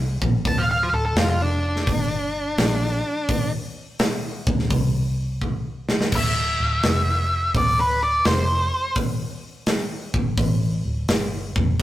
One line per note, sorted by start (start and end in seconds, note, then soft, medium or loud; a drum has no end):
0.00 0.19 C2 medium
0.21 0.44 A#1 loud
0.21 kick loud
0.45 0.89 D1 medium
0.45 0.62 A5 loud
0.45 kick loud
0.45 open hi-hat medium
0.58 0.68 F5 medium
0.71 0.93 F5 loud
0.83 0.88 C5 medium
0.93 1.15 D1 medium
0.93 1.04 A4 medium
1.06 1.15 A4 loud
1.16 1.83 F1 medium
1.16 1.28 F4 medium
1.16 snare loud
1.16 open hi-hat medium
1.30 1.42 F4 medium
1.42 3.50 D4 loud
1.76 snare soft
1.87 2.54 G1 loud
1.87 kick loud
1.87 open hi-hat medium
2.58 3.02 A#1 loud
2.58 snare loud
2.58 open hi-hat medium
3.29 kick loud
3.29 open hi-hat medium
3.99 snare loud
3.99 open hi-hat medium
4.47 4.69 D2 medium
4.47 kick loud
4.59 snare soft
4.70 6.08 C2 loud
4.70 kick loud
4.70 open hi-hat medium
5.42 kick medium
5.89 snare loud
6.01 snare medium
6.12 6.56 D1 medium
6.12 kick loud
6.12 crash loud
6.16 7.52 E5 loud
6.60 6.82 D1 medium
6.83 7.50 F1 medium
6.83 snare loud
6.83 open hi-hat medium
7.55 8.21 D1 loud
7.55 7.78 D5 medium
7.55 kick loud
7.55 open hi-hat medium
7.80 8.02 B4 medium
8.03 8.25 D5 medium
8.25 8.69 F1 medium
8.25 8.94 C5 loud
8.25 snare loud
8.25 open hi-hat medium
8.96 kick loud
8.96 open hi-hat medium
9.66 snare loud
9.66 open hi-hat medium
10.14 10.36 G1 medium
10.14 kick loud
10.37 10.81 A1 loud
10.37 kick loud
10.37 open hi-hat medium
10.85 11.07 D1 medium
11.08 11.52 G1 loud
11.08 snare loud
11.08 open hi-hat medium
11.56 11.77 F1 loud
11.56 kick loud